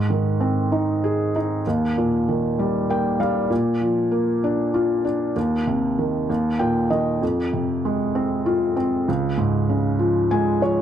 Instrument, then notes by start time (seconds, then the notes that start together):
felt piano
Already playing: G#2
0.10 D#3
0.40 C4
0.72 D#4
1.04 G#4
1.36 D#4
1.67 D#2
1.98 A#2
2.28 D#3
2.59 G3
2.90 A#3 G5
3.20 G3 F5
3.50 A#2
3.81 F3
4.11 A#3
4.44 D4
4.74 F4
5.05 D4
5.36 D#2
5.67 C3
5.98 D#3
6.30 D#2
6.59 A#2 G5
6.90 D#3 D#5
7.22 F2
7.53 C3
7.85 G#3
8.15 C4
8.46 F4
8.76 C4
9.08 C#2
9.38 G#2
9.70 C#3
9.99 F3
10.31 G#3 G#5
10.62 F3 C#5